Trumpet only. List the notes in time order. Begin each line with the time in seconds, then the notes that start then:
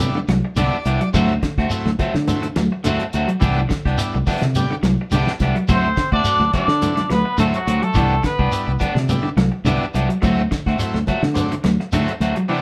5.72 C5
6.13 D5
6.54 D5
7.11 B4
7.40 A4
7.55 F#4
7.83 A4
8.26 B4